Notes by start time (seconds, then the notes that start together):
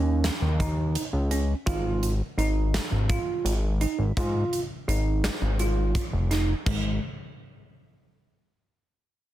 Already playing: D#2 C#4
0.24 snare, closed hi-hat
0.42 D#2
0.60 D#4, kick, closed hi-hat
0.95 closed hi-hat
1.13 C#2
1.31 C#4, closed hi-hat
1.66 G#1 F4, kick, closed hi-hat
2.03 closed hi-hat
2.38 G#1 D#4, closed hi-hat
2.74 snare, closed hi-hat
2.92 G#1
3.09 F4, kick, closed hi-hat
3.44 G#1, closed hi-hat
3.81 D#4, closed hi-hat
3.99 G#1
4.17 G#2 F4, kick, closed hi-hat
4.53 closed hi-hat
4.88 G#1 D#4, closed hi-hat
5.24 snare, closed hi-hat
5.42 G#1
5.59 F4, closed hi-hat
5.95 kick, closed hi-hat
6.13 F1
6.31 D#4, snare, closed hi-hat
6.66 G#1 G#3, kick, crash